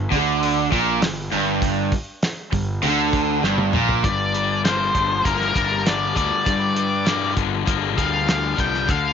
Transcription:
0.10 fingered electric bass D2, overdriven electric guitar D3, kick, open hi-hat
0.43 open hi-hat
0.71 fingered electric bass A#1, overdriven electric guitar A#2, kick, open hi-hat
1.00 fingered electric bass G1, overdriven electric guitar G2, snare, open hi-hat
1.32 fingered electric bass G1, overdriven electric guitar G2, open hi-hat
1.62 kick, open hi-hat
1.92 kick, open hi-hat
2.23 snare, open hi-hat
2.52 fingered electric bass G1, overdriven electric guitar G2, kick, open hi-hat
2.83 fingered electric bass D2, overdriven electric guitar D3, open hi-hat
3.13 kick, open hi-hat
3.42 fingered electric bass G1, overdriven electric guitar G2, snare
3.58 high tom
3.73 fingered electric bass A#1, overdriven electric guitar A#2, mid tom
3.89 floor tom
4.04 fingered electric bass G1, overdriven electric guitar G2, lead electric guitar D5, kick, closed hi-hat
4.34 overdriven electric guitar G3, closed hi-hat
4.65 overdriven electric guitar A#3, lead electric guitar C5, snare, closed hi-hat
4.94 fingered electric bass G1, overdriven electric guitar D3, kick, closed hi-hat
5.24 fingered electric bass G1, overdriven electric guitar A#3, lead electric guitar A#4, kick, closed hi-hat
5.41 snare
5.54 fingered electric bass G1, overdriven electric guitar G3, kick, closed hi-hat
5.85 overdriven electric guitar D3, lead electric guitar D5, snare, closed hi-hat
6.15 fingered electric bass D2, overdriven electric guitar G3, lead electric guitar D5, kick, closed hi-hat
6.44 overdriven electric guitar G2, fingered electric bass G2, kick, closed hi-hat
6.76 overdriven electric guitar G3, closed hi-hat
7.05 overdriven electric guitar A#3, snare, closed hi-hat
7.36 fingered electric bass G1, overdriven electric guitar D3, kick, closed hi-hat
7.66 fingered electric bass G1, overdriven electric guitar A#3, kick, closed hi-hat
7.97 fingered electric bass D2, overdriven electric guitar G3, lead electric guitar F5, kick, closed hi-hat
8.26 overdriven electric guitar D3, snare, closed hi-hat
8.57 fingered electric bass C2, overdriven electric guitar G3, lead electric guitar G5, kick, closed hi-hat
8.74 snare
8.87 fingered electric bass D2, overdriven electric guitar D3, lead electric guitar F5, kick, closed hi-hat

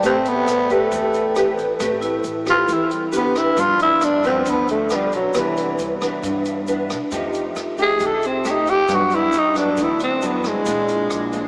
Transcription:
Already playing: vibraphone D5 G5 A5
0.03 upright bass A1, nylon-string guitar A3 C4 G4 B4, tenor saxophone C4, kick, closed hi-hat, shaker
0.25 tenor saxophone B3, closed hi-hat, shaker
0.47 upright bass A1, cross-stick, closed hi-hat, shaker
0.69 tenor saxophone A3, nylon-string guitar C4 G4 B4, kick, closed hi-hat, shaker
0.91 upright bass E2, nylon-string guitar E3, vibraphone A4, kick, closed hi-hat, shaker
1.14 closed hi-hat, shaker
1.35 nylon-string guitar C4 G4 B4, cross-stick, closed hi-hat, shaker
1.58 upright bass A1, kick, closed hi-hat, shaker
1.79 upright bass A1, nylon-string guitar A3 C4 G4 B4, kick, cross-stick, closed hi-hat, shaker
2.01 vibraphone E4, closed hi-hat, shaker
2.24 upright bass A1, closed hi-hat, shaker
2.45 nylon-string guitar C4 G4 B4, kick, cross-stick, closed hi-hat, shaker
2.50 tenor saxophone F4
2.67 upright bass E2, nylon-string guitar E3, kick, closed hi-hat, shaker
2.74 tenor saxophone E4
2.90 tenor saxophone G3, closed hi-hat, shaker
3.12 nylon-string guitar C4 G4 B4, vibraphone D4, closed hi-hat, shaker
3.16 tenor saxophone B3
3.35 upright bass A1, tenor saxophone E4, kick, cross-stick, closed hi-hat, shaker
3.56 upright bass G1, nylon-string guitar G2 F3 B3 D4, kick, closed hi-hat, shaker
3.60 tenor saxophone F4
3.79 tenor saxophone E4, closed hi-hat, shaker
4.01 upright bass G1, tenor saxophone D4, cross-stick, closed hi-hat, shaker
4.23 nylon-string guitar F3 B3 D4, tenor saxophone C4, kick, closed hi-hat, shaker
4.45 upright bass D2, nylon-string guitar D3, kick, closed hi-hat, shaker
4.50 tenor saxophone B3
4.68 tenor saxophone A3, closed hi-hat, shaker
4.89 nylon-string guitar F3 B3 D4, cross-stick, closed hi-hat, shaker
4.95 tenor saxophone G3
5.12 upright bass B1, tenor saxophone F#3, kick, closed hi-hat, shaker
5.34 upright bass C2, nylon-string guitar C3 E3 B3 D4, kick, cross-stick, closed hi-hat, shaker
5.39 tenor saxophone E3
5.57 closed hi-hat, shaker
5.79 upright bass C2, closed hi-hat, shaker
6.00 nylon-string guitar E3 B3 D4, kick, cross-stick, closed hi-hat, shaker
6.23 nylon-string guitar G2, upright bass G2, kick, closed hi-hat, shaker
6.45 closed hi-hat, shaker
6.67 nylon-string guitar E3 B3 D4, closed hi-hat, shaker
6.90 upright bass C2, kick, cross-stick, closed hi-hat, shaker
7.11 upright bass F2, nylon-string guitar F3 A3 D#4 G4, vibraphone F4, kick, closed hi-hat, shaker
7.33 closed hi-hat, shaker
7.56 upright bass F2, cross-stick, closed hi-hat, shaker
7.77 nylon-string guitar A3 D#4 G4, kick, closed hi-hat, shaker
7.82 tenor saxophone G#4
8.00 upright bass C2, nylon-string guitar C3, kick, closed hi-hat, shaker
8.06 tenor saxophone A4
8.22 closed hi-hat, shaker
8.26 tenor saxophone C4
8.44 nylon-string guitar A3 D#4 G4, cross-stick, closed hi-hat, shaker
8.50 tenor saxophone D#4
8.66 upright bass D2, tenor saxophone G4, kick, closed hi-hat, shaker
8.88 nylon-string guitar G2 F#3 B3 D4, upright bass G2, vibraphone D4, kick, cross-stick, closed hi-hat, shaker
8.95 tenor saxophone F#4
9.10 closed hi-hat, shaker
9.15 tenor saxophone E4
9.32 upright bass G2, closed hi-hat, shaker
9.39 tenor saxophone D#4
9.55 nylon-string guitar F#3 B3 D4, tenor saxophone D4, kick, cross-stick, closed hi-hat, shaker
9.77 upright bass D2, nylon-string guitar D3, kick, closed hi-hat, shaker
9.83 tenor saxophone E4
9.99 vibraphone E4, closed hi-hat, shaker
10.03 tenor saxophone C4
10.21 nylon-string guitar F#3 B3 D4, closed hi-hat, shaker
10.26 tenor saxophone B3
10.43 upright bass G2, kick, cross-stick, closed hi-hat, shaker
10.48 tenor saxophone G#3
10.65 upright bass A#1, nylon-string guitar A#2 G#3 C4 D4, kick, closed hi-hat, shaker
10.88 vibraphone F4, closed hi-hat, shaker
11.10 upright bass A#1, vibraphone D4, cross-stick, closed hi-hat, shaker
11.32 nylon-string guitar G#3 C4 D4, kick, closed hi-hat, shaker

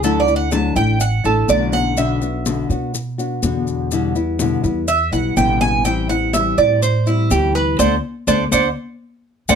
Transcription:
Already playing: upright bass D2
0.03 nylon-string guitar D3 F#3 A3 D4 E4, cuban tres A4, high conga, maracas
0.20 cuban tres D5
0.27 nylon-string guitar A3 D4 E4, high conga, maracas
0.36 cuban tres F#5
0.51 nylon-string guitar D3 F#3 A3 D4 E4, cuban tres A5, high conga, maracas
0.76 upright bass A1, nylon-string guitar A3 D4 E4, cuban tres G5, high conga, maracas
1.00 cuban tres F#5, muted nylon-string guitar stroke, high conga, maracas
1.24 upright bass A1, nylon-string guitar A3 D4 E4, cuban tres A4, high conga, maracas
1.48 upright bass B1, nylon-string guitar D3 F#3 A3 D4 E4, cuban tres D5, high conga, maracas
1.72 cuban tres F#5, high conga, maracas
1.97 nylon-string guitar B2 D3 B3 D4 F#4, cuban tres E5, high conga, maracas
2.21 nylon-string guitar B3 D4 F#4, high conga, maracas
2.46 nylon-string guitar B2 D3 B3 D4 F#4, high conga, maracas
2.70 upright bass B2, nylon-string guitar B3 D4 F#4, high conga, maracas
2.94 muted nylon-string guitar stroke, high conga, maracas
3.18 nylon-string guitar B3 D4 F#4, high conga, maracas
3.42 upright bass E2, nylon-string guitar B2 D3 B3 D4 F#4, high conga, maracas
3.67 high conga, maracas
3.91 nylon-string guitar B2 D3 G3 B3 E4, high conga, maracas
4.15 nylon-string guitar G3 B3 E4, high conga, maracas
4.39 nylon-string guitar B2 D3 G3 B3 E4, high conga, maracas
4.64 upright bass E2, nylon-string guitar G3 B3 E4, high conga, maracas
4.88 cuban tres E5, muted nylon-string guitar stroke, high conga, maracas
5.12 upright bass B1, nylon-string guitar G3 B3 E4, cuban tres F#5, high conga, maracas
5.36 upright bass A1, nylon-string guitar B2 D3 G3 B3 E4, cuban tres G5, high conga, maracas
5.61 cuban tres G#5, high conga, maracas
5.85 nylon-string guitar E3 G3 C4 E4, cuban tres G5, high conga, maracas
6.09 nylon-string guitar G3 C4 E4, cuban tres F#5, high conga, maracas
6.33 nylon-string guitar E3 G3 C4 E4, cuban tres E5, high conga, maracas
6.57 upright bass A2, nylon-string guitar G3 C4 E4, cuban tres D5, high conga, maracas
6.82 cuban tres C5, muted nylon-string guitar stroke, high conga, maracas
7.06 nylon-string guitar G3 C4 E4, cuban tres E4, high conga, maracas
7.31 upright bass D2, nylon-string guitar E3 G3 C4 E4, cuban tres G4, high conga, maracas
7.55 cuban tres B4, high conga, maracas
7.79 upright bass D2, nylon-string guitar A3 C4 D4, cuban tres C5 D5 F#5, high conga, maracas
8.27 upright bass D2, nylon-string guitar A3 C4 D4, cuban tres C5 D5 F#5, high conga, maracas
8.52 upright bass D2, nylon-string guitar A3 C4 D4, cuban tres C5 D5 F#5, high conga, maracas
9.49 upright bass D2, nylon-string guitar A3 C4 D4, cuban tres C5 D5 F#5, high conga, maracas

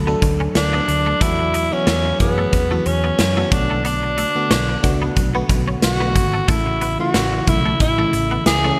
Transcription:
Already playing: fingered electric bass D2, fm electric piano F#3 A3 D4 A4
0.07 fm electric piano F#3 A3 D4 A4, clean electric guitar B3
0.22 fingered electric bass D2, muted clean electric guitar stroke, kick, closed hi-hat
0.40 clean electric guitar C#4
0.55 fingered electric bass D2, tenor saxophone D4, snare, closed hi-hat
0.73 fm electric piano F#3 A3 D4 A4, clean electric guitar B3
0.88 fingered electric bass D2, muted clean electric guitar stroke, closed hi-hat
1.06 clean electric guitar A3
1.21 fingered electric bass E2, fm electric piano E3 F#3 B3 F#4, clean electric guitar A3, tenor saxophone E4, kick, closed hi-hat
1.39 muted clean electric guitar stroke
1.54 clean electric guitar B3, closed hi-hat
1.71 fm electric piano E3 F#3 B3 F#4, tenor saxophone C#4
1.87 fingered electric bass E2, clean electric guitar C#4, snare, closed hi-hat
2.05 muted clean electric guitar stroke
2.19 fingered electric bass F#2, fm electric piano E3 F#3 B3 G#4, tenor saxophone B3, kick, closed hi-hat
2.38 clean electric guitar A3
2.53 fingered electric bass E2, kick, closed hi-hat
2.70 fm electric piano E3 F#3 B3 F#4, clean electric guitar A3
2.86 fingered electric bass E2, tenor saxophone C#4, muted clean electric guitar stroke, closed hi-hat
3.04 clean electric guitar B3
3.19 fingered electric bass F#2, snare, closed hi-hat
3.36 fm electric piano E3 F#3 B3 F#4, clean electric guitar A3
3.51 fingered electric bass B1, fm electric piano D3 A3 B3 F#4, tenor saxophone D4, muted clean electric guitar stroke, kick, closed hi-hat
3.70 clean electric guitar A3
3.85 clean electric guitar B3, tenor saxophone D4, closed hi-hat
4.03 muted clean electric guitar stroke
4.18 clean electric guitar A3, closed hi-hat
4.35 fm electric piano D3 A3 B3 F#4
4.51 fingered electric bass B1, clean electric guitar C#4, snare, closed hi-hat
4.69 muted clean electric guitar stroke
4.83 fingered electric bass C#2, fm electric piano A3 B3 D4 F#4, kick, closed hi-hat
5.02 clean electric guitar B3
5.16 fingered electric bass B1, kick, closed hi-hat
5.34 fm electric piano D3 A3 B3 F#4, clean electric guitar B3
5.49 fingered electric bass B1, muted clean electric guitar stroke, kick, closed hi-hat
5.68 clean electric guitar C#4
5.82 fingered electric bass B1, tenor saxophone F#4, snare, closed hi-hat
6.00 fm electric piano D3 A3 B3 F#4, clean electric guitar B3
6.15 fingered electric bass G#1, muted clean electric guitar stroke, kick, closed hi-hat
6.34 clean electric guitar A3
6.48 fingered electric bass A1, fm electric piano C#3 E3 A3 E4, clean electric guitar A3, tenor saxophone E4, kick, closed hi-hat
6.66 muted clean electric guitar stroke
6.81 clean electric guitar B3, closed hi-hat
6.99 fm electric piano C#3 E3 A3 E4, tenor saxophone F#4
7.14 fingered electric bass A1, clean electric guitar C#4, snare, closed hi-hat
7.33 muted clean electric guitar stroke
7.47 fingered electric bass B1, fm electric piano C#3 E3 A3 E4, tenor saxophone E4, kick, closed hi-hat
7.66 clean electric guitar A3
7.80 fingered electric bass A1, tenor saxophone E4, kick, closed hi-hat
7.98 fm electric piano C#3 E3 A3 E4, clean electric guitar A3
8.13 fingered electric bass A1, muted clean electric guitar stroke, closed hi-hat
8.31 clean electric guitar B3
8.46 fingered electric bass C#2, tenor saxophone G#4, snare, closed hi-hat
8.64 fm electric piano C#3 E3 A3 C#4, clean electric guitar A3

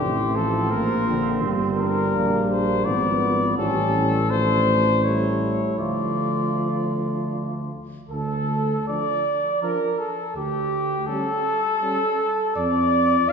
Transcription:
Already playing: french horn A3, trumpet G4
0.00 bass trombone A1, trombone E3, flugelhorn C4
0.36 trombone F3, trumpet A4
0.71 bass trombone A#1, trombone F3, french horn A#3, trumpet A#4
1.08 trombone D3
1.42 bass trombone G1, trombone G3, french horn A#3
1.78 french horn D4, trumpet A#4
2.14 bass trombone A#1, flugelhorn A#3
2.50 trumpet C5
2.85 bass trombone G#1, trombone F3, flugelhorn B3, french horn B3, trumpet D5
3.57 bass trombone A1, trombone E3, french horn G3, flugelhorn C#4, trumpet A4
4.30 trombone F3, french horn A3, flugelhorn D4, trumpet C5
5.04 trombone G3, french horn A3, flugelhorn E4, trumpet C#5
5.79 bass trombone D2, trombone F3, french horn A3, flugelhorn F4, trumpet D5
8.09 bass trombone D2, trumpet A4, flugelhorn A4
8.88 trombone F3, french horn D4, trumpet D5, flugelhorn D5
9.62 trombone F3, french horn D4, flugelhorn A#4, trumpet A#4
9.99 trumpet A4, flugelhorn A4
10.36 bass trombone D2, trumpet G4, flugelhorn G4
11.07 trombone G3, french horn C#4, trumpet A4, flugelhorn A4
11.81 trombone G3, french horn C#4
12.56 bass trombone F2, flugelhorn D5, trumpet D5
13.28 trombone F3, flugelhorn F5

